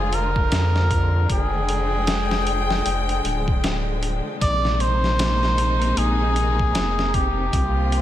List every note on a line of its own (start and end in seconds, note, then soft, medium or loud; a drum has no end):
0.00 0.49 F1 loud
0.00 4.37 D3 medium
0.00 4.37 F3 medium
0.00 7.49 G#3 medium
0.00 1.26 F4 medium
0.00 0.16 G#4 medium
0.13 1.30 A#4 loud
0.13 closed hi-hat medium
0.36 kick loud
0.52 1.27 F2 medium
0.52 snare loud
0.52 closed hi-hat medium
0.76 snare soft
0.91 kick medium
0.91 closed hi-hat medium
1.30 2.82 F1 medium
1.30 3.60 G#4 medium
1.30 4.38 G5 medium
1.30 kick loud
1.30 closed hi-hat medium
1.69 closed hi-hat medium
2.07 snare loud
2.07 closed hi-hat medium
2.31 snare medium
2.47 closed hi-hat medium
2.70 snare medium
2.86 3.21 F1 medium
2.86 closed hi-hat medium
3.09 closed hi-hat soft
3.24 4.21 D1 medium
3.24 closed hi-hat medium
3.48 kick loud
3.64 snare loud
3.64 closed hi-hat medium
4.03 closed hi-hat medium
4.41 5.94 A#1 medium
4.41 8.02 C3 medium
4.41 7.50 A#3 medium
4.41 7.50 D#4 medium
4.41 4.82 D5 loud
4.41 kick loud
4.41 closed hi-hat medium
4.65 snare soft
4.80 5.99 C5 loud
4.80 closed hi-hat medium
5.04 snare soft
5.19 snare loud
5.19 closed hi-hat medium
5.43 snare soft
5.58 closed hi-hat medium
5.82 closed hi-hat soft
5.97 6.72 A#1 loud
5.97 7.16 G#4 loud
5.97 closed hi-hat medium
6.36 closed hi-hat medium
6.59 kick medium
6.75 7.50 F1 medium
6.75 snare loud
6.75 closed hi-hat medium
6.99 snare soft
7.14 8.02 G4 medium
7.14 kick medium
7.14 closed hi-hat medium
7.53 8.02 C2 loud
7.53 8.02 F3 medium
7.53 8.02 A#3 medium
7.53 8.02 F4 medium
7.53 kick loud
7.53 closed hi-hat medium
7.92 closed hi-hat medium